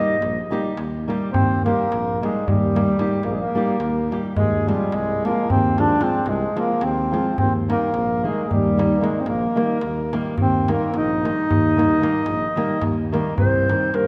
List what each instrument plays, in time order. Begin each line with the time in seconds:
Already playing: nylon-string guitar G3 A#3 D#4 G4, clarinet D#5
0.20 tuba A#1, darbuka tek
0.50 nylon-string guitar G3 A#3 D#4 G4, darbuka tek
0.65 darbuka tek
0.77 tuba D#2, darbuka tek
0.94 darbuka tek
1.08 nylon-string guitar G3 A#3 D#4 G4, darbuka tek
1.22 darbuka tek
1.32 tuba D#2, clarinet C4, accordion C5, darbuka dum
1.65 nylon-string guitar G3 A#3 D#4 G4, clarinet A#3, accordion A#4, darbuka tek
1.91 tuba A#1, darbuka tek
2.22 nylon-string guitar G3 A#3 D#4 G4, clarinet G#3, accordion G#4, darbuka tek
2.47 tuba D#2, clarinet G3, accordion G4, darbuka dum
2.75 nylon-string guitar G3 A#3 D#4 G4, darbuka tek
2.99 nylon-string guitar G3 A#3 D#4 G4, darbuka tek
3.12 darbuka tek
3.23 tuba A#1, clarinet A#3, accordion A#4, darbuka tek
3.30 clarinet G#3, accordion G#4
3.39 clarinet A#3, accordion A#4
3.55 nylon-string guitar G3 A#3 D#4 G4
3.80 tuba D#2, darbuka tek
3.96 darbuka tek
4.11 nylon-string guitar G3 A#3 D#4 G4, darbuka tek
4.36 tuba D#2, clarinet G#3, accordion G#4, darbuka dum
4.67 nylon-string guitar F3 G#3 C4 F4, clarinet G3, accordion G4, darbuka tek
4.92 tuba C2, clarinet G#3, accordion G#4, darbuka tek
5.24 nylon-string guitar F3 G#3 C4 F4, clarinet A#3, accordion A#4, darbuka tek
5.50 tuba D#2, clarinet C4, accordion C5, darbuka dum
5.77 nylon-string guitar F3 G#3 C4 F4, clarinet D4, accordion D5, darbuka tek
6.00 nylon-string guitar F3 G#3 C4 F4, clarinet C4, darbuka tek
6.04 accordion C5
6.14 darbuka tek
6.25 tuba C2, clarinet G#3, accordion G#4, darbuka tek
6.56 nylon-string guitar F3 G#3 C4 F4, clarinet A#3, accordion A#4, darbuka tek
6.81 tuba D#2, clarinet C4, accordion C5, darbuka tek
6.98 darbuka tek
7.12 nylon-string guitar F3 G#3 C4 F4, darbuka tek
7.38 tuba D#2, clarinet C4, accordion C5, darbuka dum
7.68 nylon-string guitar D#3 G3 A#3 D#4, clarinet A#3, accordion A#4, darbuka tek
7.94 tuba A#1, darbuka tek
8.23 nylon-string guitar D#3 G3 A#3 D#4, clarinet G#3, accordion G#4
8.44 clarinet G#3, accordion G#4
8.50 tuba D#2, clarinet G3, accordion G4, darbuka dum
8.77 nylon-string guitar D#3 G3 A#3 D#4, darbuka tek
9.01 nylon-string guitar D#3 G3 A#3 D#4, clarinet G#3, accordion G#4, darbuka tek
9.20 clarinet C4, accordion C5
9.26 tuba A#1, clarinet A#3, accordion A#4, darbuka tek
9.56 nylon-string guitar D#3 G3 A#3 D#4, darbuka tek
9.81 tuba D#2, darbuka tek
9.97 darbuka tek
10.13 nylon-string guitar D#3 G3 A#3 D#4, darbuka tek
10.38 tuba D#2, clarinet C4, darbuka dum
10.42 accordion C5
10.54 darbuka tek
10.68 nylon-string guitar D#3 G3 A#3 D#4, accordion A#4, darbuka tek
10.73 clarinet A#3
10.81 darbuka tek
10.94 tuba A#1, clarinet D#4, darbuka tek
10.98 accordion D#5
11.24 nylon-string guitar D#3 G3 A#3 D#4, darbuka tek
11.50 tuba D#2, darbuka dum
11.76 nylon-string guitar D#3 G3 A#3 D#4, darbuka tek
11.92 darbuka tek
12.01 nylon-string guitar D#3 G3 A#3 D#4, darbuka tek
12.26 tuba A#1, darbuka tek
12.56 nylon-string guitar D#3 G3 A#3 D#4, darbuka tek
12.81 tuba D#2, darbuka tek, darbuka dum
13.12 nylon-string guitar D#3 G3 A#3 D#4, darbuka tek
13.27 darbuka tek
13.37 tuba C2, accordion C4, clarinet C5, darbuka dum
13.54 darbuka tek
13.69 nylon-string guitar D#3 G3 C4 D#4, darbuka tek
13.82 darbuka tek
13.93 tuba G2, accordion A#3, clarinet A#4, darbuka tek